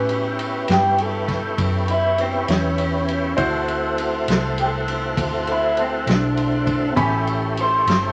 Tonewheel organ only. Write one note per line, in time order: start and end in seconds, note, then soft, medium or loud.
0.00 3.33 B3 medium
0.00 3.34 C#4 medium
0.00 3.34 E4 medium
0.00 3.34 G4 medium
3.38 6.94 A3 medium
3.38 6.94 C4 medium
3.38 6.94 E4 medium
3.38 6.94 F#4 medium
6.96 8.12 A3 medium
6.96 8.12 C#4 medium
6.96 8.12 E4 medium
6.96 8.12 G4 medium